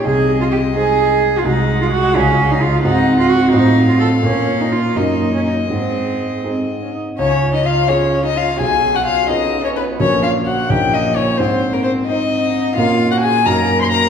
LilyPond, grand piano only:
\new Staff \with { instrumentName = "Grand piano" } { \time 6/8 \key aes \major \tempo 4. = 86 c,4. <c' ees' aes'>4. | \key des \major <c, aes ges' aes'>4. <des, aes f' aes'>4. | <aes, c' ges' aes'>4. <a, c' f' c''>4. | <bes, des' f' bes'>4. <ges, des' ees' bes'>4. |
aes,4. <c' ees' aes'>4. | des,4. <des' f' aes'>4. | ces,4. <des' f' aes'>4. | <bes,, des' ges' bes'>4. <bes,, des' ees' bes'>4. |
aes,4. <c' ees' ees''>4. | <bes, bes des' bes'>4. <ges, bes ees' bes'>4. | }